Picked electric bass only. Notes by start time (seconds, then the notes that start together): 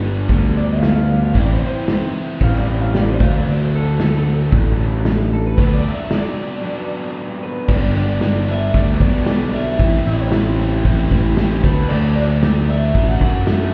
Already playing: G1
0.30 D2
1.35 A1
2.41 A1
3.20 D2
3.46 D2
4.52 A1
5.58 D2
7.68 G1
8.74 D2
9.01 B1
9.79 A1
10.06 A1
10.85 A1
11.12 A1
11.64 D2
11.90 D2
12.95 A1
13.21 F#2